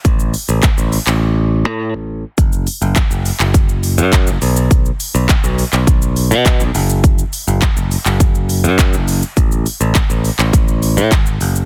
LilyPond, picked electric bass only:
\new Staff \with { instrumentName = "Picked electric bass" } { \clef bass \time 4/4 \key fis \minor \tempo 4 = 103 a,,8. a,,8 a,,8 a,,4 a,8 a,,8. | fis,,8. fis,,8 fis,,8 fis,,4 fis,8 fis,,16 b,,8~ | b,,8. b,,8 b,,8 b,,4 b,8 b,,16 fis,,8~ | fis,,8. fis,,8 fis,,8 fis,,4 fis,8 fis,,8. |
a,,8. a,,8 a,,8 a,,4 a,16 gis,,8 fis,,8 | }